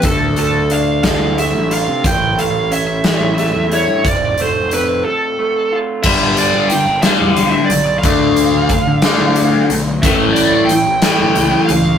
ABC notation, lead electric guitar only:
X:1
M:6/8
L:1/16
Q:3/8=60
K:Ddor
V:1 name="Lead electric guitar"
A2 A2 f2 f2 e2 f2 | g2 f2 e6 ^c2 | d2 c2 B2 A4 z2 | e2 d2 g2 f3 e d2 |
f8- f2 z2 | e2 d2 g6 f2 |]